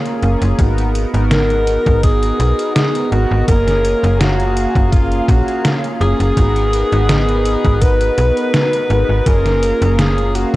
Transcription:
Already playing: A#3 C#4 F4 G#4 A#4 F5 A#5
0.06 closed hi-hat
0.22 F#1 A#3 C#4 F4 G#4, closed hi-hat
0.42 F#1, closed hi-hat
0.58 G#1 B3 D#4 F#4 A#4 D#5, kick, closed hi-hat
0.78 closed hi-hat
0.95 closed hi-hat
1.13 G#1 B3 D#4 F#4 A#4, closed hi-hat
1.31 A#4, snare, closed hi-hat
1.50 closed hi-hat
1.67 closed hi-hat
1.86 G#1, kick, closed hi-hat
2.03 G#4, kick, closed hi-hat
2.23 closed hi-hat
2.40 B1, closed hi-hat
2.59 closed hi-hat
2.75 G#4, snare, closed hi-hat
2.95 closed hi-hat
3.11 G#1 B3 D#4 F#4 A#4, closed hi-hat
3.31 G#1
3.47 F#1 A#3 C#4 F4 G#4 A#4 F5 A#5, kick, closed hi-hat
3.68 snare, closed hi-hat
3.85 closed hi-hat
4.02 F#1 A#3 C#4 G#4 F5, closed hi-hat
4.20 F#4, snare, closed hi-hat
4.40 closed hi-hat
4.57 closed hi-hat
4.75 F#1, kick, closed hi-hat
4.92 F4, kick, closed hi-hat
5.12 closed hi-hat
5.28 A#1 F#4, kick, closed hi-hat
5.48 closed hi-hat
5.65 snare, closed hi-hat
5.84 closed hi-hat
6.00 F#1 A#3 C#4 F4 G#4, closed hi-hat
6.20 F#1, closed hi-hat
6.36 G#1 B3 D#4 F#4 G#4 A#4 D#5, kick, closed hi-hat
6.56 closed hi-hat
6.73 closed hi-hat
6.91 G#1 B3 D#4 F#4 B4, closed hi-hat
7.09 snare, closed hi-hat
7.29 closed hi-hat
7.45 closed hi-hat
7.65 G#1, kick, closed hi-hat
7.82 B4, kick, closed hi-hat
8.01 closed hi-hat
8.18 B1, closed hi-hat
8.37 closed hi-hat
8.54 snare, closed hi-hat
8.73 closed hi-hat
8.90 G#1 B3 D#4 F#4 B4, closed hi-hat
9.09 G#1
9.26 F#1 A#3 C#4 F4 G#4 A#4 F5 A#5, kick, closed hi-hat
9.46 snare, closed hi-hat
9.63 closed hi-hat
9.80 F#1 A#3 C#4 G#4 F5, closed hi-hat
9.99 G#4, snare, closed hi-hat
10.18 closed hi-hat
10.35 F#4, closed hi-hat

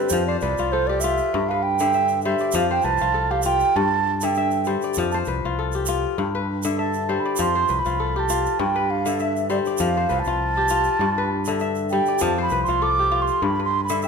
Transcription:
Already playing: G2 D3 G3 C4 B4 E5
0.09 F2 F3 C5, shaker
0.27 C5 D5
0.40 C2 B4 D5, shaker
0.57 C2 F4, shaker
0.72 A4 C5
0.87 G4 D5
1.00 F4 E5, shaker
1.17 shaker
1.34 G2
1.48 B4 F5
1.63 G5
1.79 D3 E5, shaker
1.93 E5, shaker
2.08 shaker
2.21 G3 E5, shaker
2.26 C5
2.38 D5, shaker
2.52 F2 F3 F5, shaker
2.71 C5 G5
2.82 C2 B4 A5, shaker
2.98 F4, shaker
3.02 C2
3.14 A4
3.31 G4 F5
3.42 F4 G5, shaker
3.60 shaker
3.76 G2 A5
4.21 D3 E5 G5, shaker
4.34 E5, shaker
4.51 shaker
4.65 G3 C5, shaker
4.82 D5, shaker
4.94 F2, shaker
4.98 F3
5.12 C5 A5, shaker
5.25 C2 B4, shaker
5.45 C2 F4
5.59 A4
5.72 G4, shaker
5.86 F4, shaker
6.18 G2
6.35 B4
6.63 D3 E5, shaker
6.78 E5 A5
6.93 shaker
7.09 G3 C5
7.20 B5
7.25 D5
7.36 F2 F3 C6, shaker
7.55 C5
7.68 C2 B4, shaker
7.79 B5
7.85 C2 F4, shaker
8.00 A4
8.16 G4 A5
8.29 F4, shaker
8.46 shaker
8.59 G2 G5
8.76 B4
8.90 F5
9.06 D3 E5, shaker
9.19 E5, shaker
9.36 shaker
9.50 G3 C5 D5, shaker
9.65 D5, shaker
9.77 F2 F3 F5, shaker
9.97 C5
10.09 C2 B4, shaker
10.19 A5
10.24 C2 F4, shaker
10.57 G4
10.68 F4, shaker
10.84 shaker
10.99 G2
11.18 B4
11.45 D3 E5, shaker
11.59 E5, shaker
11.75 shaker
11.89 G3 G5, shaker
12.06 D5, shaker
12.19 F2 F3 A5, shaker
12.38 C5 B5
12.49 C2 B4, shaker
12.64 C6, shaker
12.68 C2 F4
12.82 A4 D6
12.99 G4
13.12 F4
13.22 C6
13.28 shaker
13.42 G2 B5
13.59 B4
13.65 C6
13.84 B5
13.89 D3 E5, shaker
14.02 E5 G5, shaker

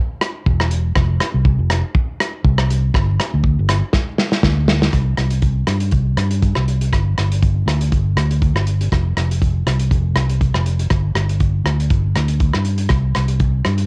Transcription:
0.21 cross-stick, closed hi-hat
0.46 E1, kick
0.60 cross-stick
0.71 closed hi-hat
0.95 F1, kick, cross-stick
1.21 cross-stick, closed hi-hat
1.34 C2
1.45 kick
1.59 F1
1.70 cross-stick, closed hi-hat
1.95 kick
2.20 cross-stick, closed hi-hat
2.44 C2, kick
2.58 cross-stick
2.70 closed hi-hat
2.94 G1, kick, cross-stick
3.20 cross-stick, closed hi-hat
3.34 D2
3.44 kick
3.59 G1
3.69 cross-stick, closed hi-hat
3.93 kick, snare
4.18 snare
4.32 snare
4.43 D2, kick, snare
4.68 snare
4.82 snare
4.93 C2, kick, cross-stick, closed hi-hat
5.18 C2, cross-stick, closed hi-hat
5.31 closed hi-hat
5.42 kick, closed hi-hat
5.67 G2, cross-stick, closed hi-hat
5.80 closed hi-hat
5.91 C2, kick, closed hi-hat
6.17 G2, cross-stick, closed hi-hat
6.31 closed hi-hat
6.42 kick, closed hi-hat
6.55 C2, cross-stick
6.68 closed hi-hat
6.81 closed hi-hat
6.92 G1, kick, cross-stick, closed hi-hat
7.18 G1, cross-stick, closed hi-hat
7.32 closed hi-hat
7.42 kick, closed hi-hat
7.66 D2, cross-stick, closed hi-hat
7.81 closed hi-hat
7.92 G1, kick, closed hi-hat
8.16 D2, cross-stick, closed hi-hat
8.31 closed hi-hat
8.42 kick, closed hi-hat
8.53 G1, cross-stick
8.67 closed hi-hat
8.81 closed hi-hat
8.92 F1, kick, cross-stick, closed hi-hat
9.17 F1, cross-stick, closed hi-hat
9.31 closed hi-hat
9.42 kick, closed hi-hat
9.66 C2, cross-stick, closed hi-hat
9.79 closed hi-hat
9.91 F1, kick, closed hi-hat
10.15 C2, cross-stick, closed hi-hat
10.29 closed hi-hat
10.41 kick, closed hi-hat
10.54 F1, cross-stick
10.66 closed hi-hat
10.79 closed hi-hat
10.90 G1, kick, cross-stick, closed hi-hat
11.15 G1, cross-stick, closed hi-hat
11.29 closed hi-hat
11.40 kick, closed hi-hat
11.64 D2, cross-stick, closed hi-hat
11.80 closed hi-hat
11.90 G1, kick, closed hi-hat
12.15 D2, cross-stick, closed hi-hat
12.28 closed hi-hat
12.40 kick, closed hi-hat
12.53 G2, cross-stick
12.65 closed hi-hat
12.78 closed hi-hat
12.89 C2, kick, cross-stick, closed hi-hat
13.15 C2, cross-stick, closed hi-hat
13.28 closed hi-hat
13.40 kick, closed hi-hat
13.65 G2, cross-stick, closed hi-hat
13.78 closed hi-hat

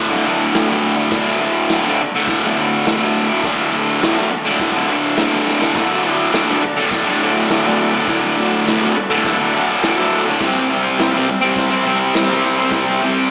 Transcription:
Already playing: A2
0.10 A2 D3
0.26 D2 A2 D3
0.53 D2 A2 D3, snare, crash
0.69 A2 D3
0.97 A2 D3
1.11 D2 A2, kick, snare, crash
1.16 D3
1.40 D2 A2 D3
1.69 D2 A2, snare, crash
1.73 D3
1.85 A2 D3
2.02 muted distorted electric guitar stroke
2.15 A2 D3
2.27 kick, snare, crash
2.44 A2 D3
2.57 D2 A2
2.61 D3
2.85 D2 A2 D3, snare, crash
3.01 A2 D3
3.29 A2 D3
3.43 D2 A2, kick, snare, crash
3.48 D3
3.73 D2 A2 D3
4.02 D2 A2 D3, snare, crash
4.16 A2 D3
4.32 muted distorted electric guitar stroke
4.46 A2 D3
4.60 kick, snare, crash
4.73 D3
4.77 A2
4.89 D2 A2 D3
5.16 D2 A2 D3, snare, crash
5.32 A2 D3
5.47 snare
5.60 A2 D3, snare
5.73 D2 A2 D3 F#4 A4 D5, kick, snare, splash, crash
6.03 D2 A2 D3
6.32 D2 A2 D3 F#4 A4 D5, snare, crash
6.47 A2 D3
6.63 muted distorted electric guitar stroke
6.76 A2 D3
6.91 F#4 A4 D5, kick, snare, crash
7.05 A2 D3
7.21 D2 A2 D3
7.48 D2 A2 F#4 A4 D5, snare, crash
7.53 D3
7.65 A2 D3
7.93 D3
7.97 A2
8.07 D2 A2 D3 F#4 A4 D5, kick, snare, crash
8.37 D2 A2 D3
8.66 D2 A2 D3 F#4 A4 B4, snare, crash
8.82 A2 D3
8.97 muted distorted electric guitar stroke
9.10 A2 D3
9.24 F#4 A4 D5, kick, snare, crash
9.38 A2 D3
9.54 D2 A2 D3
9.82 D2 A2 F#4 A4 D5, snare, crash
9.87 D3
9.98 A2 D3
10.25 D3
10.29 A2
10.39 C3 G3 G4 C5 E5, kick, snare, crash
10.44 C4
10.71 C3 G3 C4
10.96 C3 G4 C5 E5, crash
11.00 G3 C4, snare
11.14 G3 C4
11.29 muted distorted electric guitar stroke
11.41 G3 C4
11.54 G4 C5 E5, kick, snare, crash
11.71 G3 C4
11.85 C3 G3 C4
12.13 C3 G3 G4 C5 E5, snare, crash
12.18 C4
12.29 G3 C4
12.58 G3 C4
12.71 C3 G3 G4 C5 E5, kick, snare, crash
12.75 C4
13.02 C3 G3 C4

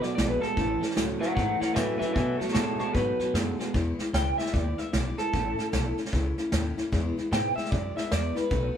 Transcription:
0.01 B2 F#3 A3 B3 F#4 D5, snare
0.15 A#1 B2 D#3 G#3 A3 B3 F#4 D5, snare, hi-hat pedal
0.28 B4
0.41 B2 G#3 A3 B3 F#4 A4, muted upright bass stroke, snare
0.56 A1 A2 E3 A3 C#4 E4, kick, snare
0.80 A2 E3 A3 C#4 E4, muted upright bass stroke, snare
0.90 snare
0.95 C#2 A2 E3 F#3 A3 C#4 E4, snare, hi-hat pedal
1.20 A2 F#3 A3 C#4 E4 C#5 F#5, snare
1.35 G#2 A2 E3 A3 C#4 E4 C#5 F#5, kick, snare
1.60 A2 E3 A3 C#4 E4 C#5 F#5, muted upright bass stroke, snare
1.74 A2 E3 F#3 A3 C#4 E4 B4 E5, snare, hi-hat pedal
1.98 A2 F#3 A3 C#4 E4 B4 E5, muted upright bass stroke, snare
2.13 B2 D#3 F#3 A3 B3 F#4 B4 E5, kick, snare
2.37 B2 F#3 A3 B3 F#4 A4 C#5, muted upright bass stroke, snare
2.48 snare
2.52 A2 B2 D#3 G#3 A3 B3 F#4 A4 C#5, snare, hi-hat pedal
2.79 B2 G#3 A3 B3 F#4 A4 C#5, muted upright bass stroke, snare
2.93 G#2 B2 D#3 F#3 A3 B3 F#4 B4, kick, snare
3.19 B2 F#3 A3 B3 F#4, muted upright bass stroke, snare
3.34 F#2 B2 D#3 G#3 A3 B3 F#4, snare, hi-hat pedal
3.59 B2 G#3 A3 B3 F#4, muted upright bass stroke, snare
3.74 E2 B2 E3 G#3 B3 E4, kick, snare
3.98 E3 G#3 B3 E4, muted upright bass stroke, snare
4.13 C#2 E2 B2 E3 G#3 B3 E4 G5, snare, hi-hat pedal
4.38 E3 G#3 B3 E4 E5, muted upright bass stroke, snare
4.46 snare
4.53 D#2 E3 G#3 B3 E4 D5, kick, snare
4.78 E3 G#3 B3 E4 E5, muted upright bass stroke, snare
4.93 B1 E2 B2 E3 G#3 B3 E4 D5, snare, hi-hat pedal
5.18 E3 G#3 B3 E4 A4, muted upright bass stroke, snare
5.33 A1 A2 E3 A3 C#4 E4, kick, snare
5.57 A3 C#4 E4, muted upright bass stroke, snare
5.72 B1 A2 E3 A3 C#4 E4, snare, hi-hat pedal
5.97 A3 C#4 E4, muted upright bass stroke, snare
6.05 snare
6.13 C#2 E3 A3 C#4 E4, kick, snare
6.38 A3 C#4 E4, muted upright bass stroke, snare
6.52 D#2 A2 E3 A3 C#4 E4, snare, hi-hat pedal
6.77 A3 C#4 E4, muted upright bass stroke, snare
6.92 E2 B2 E3 G#3 B3 E4, kick, snare
7.17 E3 G#3 B3 E4, snare
7.31 E2 G#2 B2 E3 G#3 B3 E4 G5, snare, hi-hat pedal
7.56 E3 G#3 B3 E4 E5, muted upright bass stroke, snare
7.65 snare
7.71 F#2 E3 G#3 B3 E4 D5, kick, snare
7.96 E3 G#3 B3 E4 E5, muted upright bass stroke, snare
8.11 E2 B2 E3 G#3 B3 E4 D5, snare, hi-hat pedal
8.35 E3 G#3 B3 E4 B4, snare
8.50 B1 B2 D#3 A3 B3 F#4, kick, snare

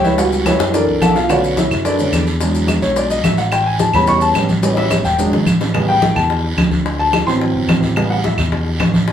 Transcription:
Already playing: C#2
0.04 E4 B4 C#5 E5, high bongo, high conga, short guiro, maracas
0.18 G3 B3 E4 F#4 F#5, high bongo, long guiro, maracas
0.32 high conga, maracas
0.46 E4 B4 C#5 E5, high bongo, high conga, short guiro, claves, maracas
0.59 F#2, high bongo, short guiro, maracas
0.73 E3 A#3 D4 A4 A#4 D5, high bongo, high conga, long guiro, maracas
0.87 C2, high conga
1.01 B1 A4 E5 F#5 A5, low bongo, high conga, short guiro, claves, maracas
1.16 F4 F5, low bongo, short guiro, maracas
1.29 D3 A3 C#4 F#4 B4 D5 F#5, high bongo, high conga, long guiro, claves, maracas
1.43 high conga, maracas
1.57 E4 E5, high bongo, high conga, short guiro, maracas
1.70 F#2, high bongo, low conga, short guiro, claves, maracas
1.85 D4 A4 B4 D5, high bongo, high conga, long guiro, maracas
1.98 D3 A3 C#4, high bongo, high conga, maracas
2.12 E2, high bongo, low bongo, short guiro, claves, maracas
2.27 high bongo, short guiro, maracas
2.40 F#3 G#3 D4, high bongo, high conga, long guiro, maracas
2.55 high conga, maracas
2.68 high bongo, high conga, short guiro, claves, maracas
2.82 B1 C#5, high bongo, high conga, short guiro, maracas
2.96 D5, high bongo, high conga, long guiro, maracas
3.10 D#5, high bongo, high conga, maracas
3.24 A1 E5, high bongo, low bongo, high conga, short guiro, claves, maracas
3.38 F#5, high bongo, short guiro, maracas
3.52 G5, high bongo, high conga, long guiro, claves, maracas
3.66 G#5, high conga
3.79 A5, high bongo, high conga, short guiro, maracas
3.93 E2 G3 B3 C#4 B5, high bongo, low conga, short guiro, claves, maracas
4.07 C#6, high bongo, high conga, low conga, long guiro, maracas
4.21 A5, high bongo, high conga, maracas
4.35 A1 G3 B3 C#4, high bongo, low bongo, high conga, short guiro, claves, maracas
4.49 high bongo, high conga, short guiro, maracas
4.63 G3 B3 C#4, high bongo, high conga, long guiro, maracas
4.73 D#5
4.77 E5, high bongo, high conga
4.91 high conga, short guiro, claves, maracas
5.04 E1 G5, high conga, short guiro, maracas
5.18 F#3 G#3 D4, low bongo, high conga, long guiro, maracas
5.31 G#1, low bongo, high conga
5.46 A1, high conga, short guiro, claves, maracas
5.61 low bongo, short guiro, maracas
5.74 C#3 G3 B3, high bongo, high conga, long guiro, claves
5.88 G5, high bongo, high conga
6.02 high bongo, high conga, short guiro
6.15 E2 A5, high bongo, high conga, low conga, short guiro, claves
6.30 high bongo, high conga, long guiro
6.44 high bongo, high conga
6.57 D2, high bongo, low bongo, high conga, short guiro, claves
6.71 high conga, short guiro
6.86 high bongo, long guiro
6.99 A5, high bongo, high conga
7.13 high bongo, high conga, short guiro, claves
7.26 A1 E3 F#3 C4 C6, high bongo, short guiro
7.41 high bongo, high conga, long guiro
7.54 G1, high conga
7.68 A1, high bongo, low bongo, high conga, short guiro, claves
7.82 high bongo, high conga, short guiro
7.96 C#3 G3 B3, high bongo, long guiro, claves
8.10 F#5, high bongo, high conga
8.24 E5, high bongo, high conga, short guiro
8.38 E2, high bongo, high conga, low conga, short guiro, claves
8.52 high bongo, high conga, low conga, long guiro
8.66 high bongo, high conga
8.79 A1, high bongo, low bongo, high conga, short guiro, claves
8.94 high conga, short guiro
9.08 high bongo, high conga

